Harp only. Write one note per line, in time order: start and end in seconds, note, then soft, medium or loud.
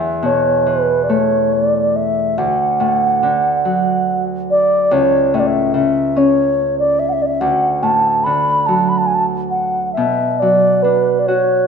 0.00 2.43 E2 soft
0.22 2.43 B2 soft
0.66 2.43 E3 soft
1.09 4.42 A3 soft
2.38 4.97 D2 medium
2.80 3.28 A2 soft
3.23 4.97 D3 soft
3.65 4.97 F#3 soft
4.91 7.45 C#2 medium
5.34 5.80 A2 soft
5.74 7.45 C#3 soft
6.16 7.47 C#4 soft
7.41 10.01 D2 medium
7.83 8.28 A2 soft
8.26 10.01 D3 soft
8.68 10.01 F#3 soft
9.97 11.67 B2 soft
10.42 11.67 F#3 soft
10.84 11.67 D4 soft
11.28 11.67 F#4 soft